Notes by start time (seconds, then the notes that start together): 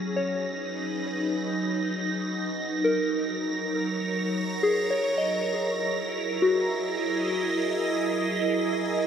Already playing: F#3 C#4 D#4 G#4 A#6
0.16 C#5
0.33 B4
2.48 A#4
2.84 A#4
3.17 C#5
4.63 G#4
4.91 C#5
5.07 E4
5.18 D#5
5.86 G#4
6.35 D#5
6.42 F#4